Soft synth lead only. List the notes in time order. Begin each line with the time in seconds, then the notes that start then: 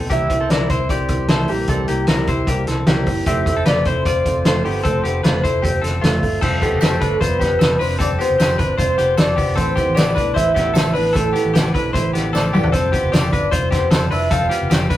0.12 E5
0.50 D5
0.69 C5
0.90 C5
1.28 A4
1.50 G4
3.27 E5
3.67 D5
3.87 C5
6.62 A4
7.21 B4
7.81 C5
8.01 D5
8.20 C5
8.79 C5
9.19 D5
9.57 C5
9.96 D5
10.36 E5
10.95 B4
11.16 A4
12.35 D5
12.73 C5
13.13 D5
13.52 C5
14.12 E5
14.32 F5